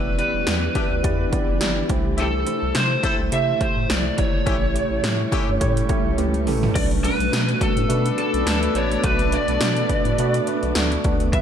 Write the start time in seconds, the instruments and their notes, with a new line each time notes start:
Already playing: analog synth bass E1, tine electric piano E3 B3 E4 G4 D5, ambient pad E3 D4 G4, lead electric guitar B4
0.18 tine electric piano B3 E4 G4 D5, lead electric guitar B4, closed hi-hat
0.34 analog synth bass E1
0.47 analog synth bass E2, tine electric piano B3 E4 G4 D5, snare, closed hi-hat
0.75 tine electric piano B3 E4 G4 D5, horn section D4 E4 G4, kick, closed hi-hat
0.91 analog synth bass D2
1.03 analog synth bass E2, tine electric piano B3 E4 G4 D5, kick, closed hi-hat
1.32 tine electric piano B3 E4 G4 D5, kick, closed hi-hat
1.49 analog synth bass F#1
1.60 analog synth bass G1, tine electric piano B3 E4 G4 D5, snare, closed hi-hat
1.89 analog synth bass C2, tine electric piano C3 A3 E4 G4 C5, ambient pad C3 A3 E4, kick, closed hi-hat
2.18 horn section C4 E4 G4, lead electric guitar A4, closed hi-hat
2.46 tine electric piano A3 E4 G4 C5, closed hi-hat
2.63 analog synth bass C2
2.75 analog synth bass C3, tine electric piano A3 E4 G4 C5, lead electric guitar C5, snare, closed hi-hat
3.03 tine electric piano A3 E4 G4 C5, horn section C4 E4 A4, lead electric guitar C5, kick, closed hi-hat
3.19 analog synth bass C2
3.31 analog synth bass C3, tine electric piano A3 E4 G4 C5, lead electric guitar E5, closed hi-hat
3.60 tine electric piano A3 E4 G4 C5, lead electric guitar C5, kick, closed hi-hat
3.76 analog synth bass A2
3.88 analog synth bass C2, tine electric piano A3 E4 G4 C5, lead electric guitar D5, snare, closed hi-hat
4.17 analog synth bass G1, tine electric piano A3 E4 G4 D5, lead electric guitar C#5, kick, closed hi-hat
4.45 analog synth bass A1, tine electric piano A2 A3 E4 G4 C#5, ambient pad G3 C#4, horn section C#4 E4 G4, kick, closed hi-hat
4.74 tine electric piano A3 E4 G4 C#5, closed hi-hat
4.90 analog synth bass A1
5.03 analog synth bass A2, tine electric piano A3 E4 G4 C#5, snare, closed hi-hat
5.31 tine electric piano A3 E4 G4 C#5, horn section C#4 E4 G4, kick, closed hi-hat
5.48 analog synth bass G2
5.60 analog synth bass A2, tine electric piano A3 E4 G4 C#5, kick, closed hi-hat
5.77 closed hi-hat
5.89 tine electric piano A3 E4 G4 C#5, kick, closed hi-hat
6.05 analog synth bass B1
6.17 analog synth bass C#2, tine electric piano A3 E4 G4 B4, closed hi-hat, high tom
6.34 closed hi-hat
6.46 analog synth bass A1, tine electric piano A3 E4 G4 A4, mid tom, open hi-hat
6.63 floor tom
6.75 analog synth bass B1, tine electric piano B2 A3 D4 F#4 B4, ambient pad A3 B3 D4, lead electric guitar D5, kick, closed hi-hat, crash
6.91 closed hi-hat
7.03 tine electric piano A3 D4 F#4 B4, lead electric guitar B4, closed hi-hat
7.20 analog synth bass B1, closed hi-hat
7.32 analog synth bass B2, tine electric piano A3 D4 F#4 B4, snare, closed hi-hat, tambourine
7.49 closed hi-hat
7.60 tine electric piano A3 D4 F#4 B4, lead electric guitar A4, kick, closed hi-hat
7.77 analog synth bass A2, closed hi-hat
7.89 analog synth bass B2, tine electric piano A3 D4 F#4 B4, horn section A4 B4 D5, closed hi-hat
8.06 closed hi-hat
8.18 tine electric piano A3 D4 F#4 B4, lead electric guitar A4, closed hi-hat
8.34 analog synth bass B1, closed hi-hat
8.47 analog synth bass D2, tine electric piano A3 D4 F#4 B4, lead electric guitar A4, snare, closed hi-hat, tambourine
8.63 closed hi-hat
8.75 analog synth bass A1, tine electric piano A3 D4 F#4 B4, lead electric guitar C#5, closed hi-hat
8.92 closed hi-hat
9.04 analog synth bass B1, tine electric piano B2 A3 D4 F#4 B4, lead electric guitar B4, kick, closed hi-hat
9.19 closed hi-hat
9.32 tine electric piano A3 D4 F#4 B4, lead electric guitar D5, closed hi-hat
9.48 analog synth bass B1, closed hi-hat
9.61 analog synth bass B2, tine electric piano A3 D4 F#4 B4, snare, closed hi-hat, tambourine
9.77 closed hi-hat
9.89 tine electric piano A3 D4 F#4 B4, kick, closed hi-hat
10.05 analog synth bass A2, closed hi-hat
10.18 analog synth bass B2, tine electric piano A3 D4 F#4 B4, closed hi-hat
10.34 closed hi-hat
10.47 tine electric piano A3 D4 F#4 B4, closed hi-hat
10.63 analog synth bass B1, closed hi-hat
10.75 analog synth bass D2, tine electric piano A3 D4 F#4 D5, snare, closed hi-hat, tambourine
10.92 closed hi-hat
11.04 analog synth bass D2, tine electric piano A3 D4 F#4 B4, kick, closed hi-hat
11.20 closed hi-hat
11.33 analog synth bass E2, ambient pad E3 G4, tine electric piano E3 G3 B3 E4 B4, horn section G4 B4 E5, lead electric guitar E5, kick, closed hi-hat